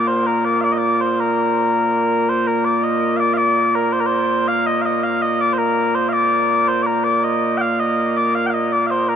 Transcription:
0.00 9.16 A#2 medium
0.00 9.16 A#3 medium
0.07 0.26 C5 medium
0.26 0.45 A#4 medium
0.45 0.61 D5 medium
0.61 0.72 D5 medium
0.61 0.64 F5 medium
0.72 0.78 D#5 medium
0.78 1.01 D5 medium
1.01 1.20 C5 medium
1.20 2.29 A#4 medium
2.29 2.47 C5 loud
2.47 2.65 A#4 medium
2.65 2.83 D5 medium
2.83 3.17 D#5 medium
3.17 3.33 D5 loud
3.17 3.20 F5 loud
3.33 3.75 D5 loud
3.33 3.37 F5 loud
3.75 3.92 A#4 medium
3.92 4.00 C5 loud
4.00 4.06 A#4 medium
4.06 4.48 C5 loud
4.48 4.66 F5 loud
4.66 4.81 D#5 loud
4.81 4.86 F5 loud
4.86 5.03 D#5 loud
5.03 5.22 F5 loud
5.22 5.40 D#5 loud
5.40 5.53 D5 loud
5.53 5.58 C5 medium
5.58 5.95 A#4 loud
5.95 6.09 C5 medium
6.09 6.13 F5 loud
6.13 6.68 D5 loud
6.68 6.83 C5 loud
6.83 7.04 A#4 medium
6.83 6.86 D5 medium
7.04 7.23 D5 medium
7.23 7.58 D#5 loud
7.58 7.80 F5 loud
7.58 7.61 G5 loud
7.80 8.17 D#5 loud
8.17 8.35 D5 medium
8.35 8.46 F5 loud
8.46 8.54 F5 medium
8.46 8.50 G5 medium
8.54 8.72 D#5 medium
8.72 8.86 D5 medium
8.86 8.91 F5 loud
8.91 9.08 C5 loud
9.08 9.16 A#4 medium

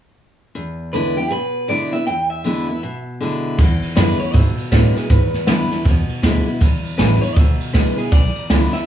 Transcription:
0.55 1.28 E2 medium
0.93 1.16 D3 medium
0.93 1.17 G#3 medium
0.93 1.17 B3 medium
0.93 1.16 E4 loud
0.93 1.16 B4 medium
1.17 1.32 B3 soft
1.17 1.31 E4 medium
1.17 1.31 G4 medium
1.31 2.04 B2 medium
1.31 1.68 B4 medium
1.68 1.91 D3 medium
1.68 1.92 G#3 medium
1.68 1.92 B3 medium
1.68 1.91 E4 medium
1.68 1.92 D5 medium
1.92 2.08 B3 soft
1.92 2.06 E4 medium
1.92 2.06 E5 medium
2.07 2.80 E2 medium
2.07 2.30 G5 medium
2.30 3.04 E5 medium
2.44 2.67 D3 medium
2.44 2.68 G#3 loud
2.44 2.68 B3 medium
2.44 2.67 E4 loud
2.68 2.83 B3 soft
2.68 2.82 E4 medium
2.83 3.56 B2 medium
3.21 3.57 D3 medium
3.21 3.57 G#3 medium
3.21 3.58 B3 medium
3.21 3.58 E4 medium
3.59 3.81 E2 medium
3.59 4.32 E2 medium
3.59 kick loud
3.59 crash loud
3.82 muted upright bass stroke medium
3.82 ride medium
3.96 4.19 F#2 medium
3.96 4.19 D3 loud
3.96 4.19 G#3 medium
3.96 4.19 B3 loud
3.96 4.18 E4 loud
3.96 4.19 B4 medium
3.96 snare loud
3.96 ride medium
4.19 4.34 B3 medium
4.19 4.33 E4 medium
4.19 4.34 C#5 medium
4.19 muted upright bass stroke medium
4.19 ride medium
4.33 4.57 G#2 medium
4.33 5.07 B2 medium
4.33 4.71 E5 medium
4.33 kick loud
4.33 ride medium
4.58 muted upright bass stroke medium
4.58 ride medium
4.71 4.95 A2 loud
4.71 4.94 D3 medium
4.71 4.95 G#3 medium
4.71 4.95 B3 medium
4.71 4.93 E4 medium
4.71 4.96 B4 medium
4.71 kick medium
4.71 snare loud
4.71 ride loud
4.94 5.10 B3 soft
4.94 5.09 E4 medium
4.94 5.10 G#4 medium
4.94 snare soft
4.94 ride medium
5.10 5.83 E2 medium
5.10 5.33 G#2 medium
5.10 5.47 B4 medium
5.10 kick loud
5.10 ride medium
5.33 muted upright bass stroke medium
5.33 snare soft
5.33 ride medium
5.46 5.70 F#2 loud
5.46 5.70 D3 medium
5.46 5.70 G#3 medium
5.46 5.71 B3 loud
5.46 5.69 E4 loud
5.46 snare loud
5.46 ride medium
5.71 5.86 B3 soft
5.71 5.85 E4 medium
5.71 muted upright bass stroke soft
5.71 snare soft
5.71 ride medium
5.85 6.08 E2 medium
5.85 6.58 B2 loud
5.85 kick loud
5.85 ride medium
6.09 muted upright bass stroke medium
6.09 ride medium
6.22 6.46 D2 loud
6.22 6.45 D3 medium
6.22 6.46 G#3 medium
6.22 6.46 B3 medium
6.22 6.44 E4 medium
6.22 kick medium
6.22 snare loud
6.22 ride medium
6.45 6.61 B3 soft
6.45 6.60 E4 medium
6.45 muted upright bass stroke medium
6.45 ride medium
6.61 6.83 B1 medium
6.61 7.34 E2 medium
6.61 kick loud
6.61 ride medium
6.85 muted upright bass stroke soft
6.85 ride medium
6.98 7.22 A1 loud
6.98 7.21 D3 medium
6.98 7.21 G#3 loud
6.98 7.22 B3 loud
6.98 7.20 E4 loud
6.98 7.21 B4 loud
6.98 snare loud
6.98 ride medium
7.21 7.37 B3 soft
7.21 7.36 E4 medium
7.21 7.36 C#5 medium
7.21 muted upright bass stroke medium
7.21 ride medium
7.36 7.60 D2 medium
7.36 8.09 B2 medium
7.36 7.73 E5 loud
7.36 kick loud
7.36 ride loud
7.60 muted upright bass stroke medium
7.60 ride medium
7.73 7.97 C2 medium
7.73 7.96 D3 medium
7.73 7.97 G#3 medium
7.73 7.97 B3 medium
7.73 7.95 E4 loud
7.73 7.97 B4 medium
7.73 kick medium
7.73 snare loud
7.73 ride loud
7.96 8.12 B3 soft
7.96 8.11 E4 medium
7.96 8.12 G#4 medium
7.96 muted upright bass stroke soft
7.96 ride medium
8.12 8.35 B1 medium
8.12 8.85 E2 medium
8.12 8.49 D5 medium
8.12 kick loud
8.12 ride medium
8.35 muted upright bass stroke medium
8.35 ride medium
8.50 8.72 C#2 medium
8.50 8.73 D3 medium
8.50 8.73 G#3 medium
8.50 8.73 B3 loud
8.50 8.72 E4 loud
8.50 snare loud
8.50 ride medium
8.73 8.86 B3 soft
8.73 8.86 E4 medium
8.73 8.86 E5 loud
8.73 muted upright bass stroke medium
8.73 snare soft
8.73 ride medium

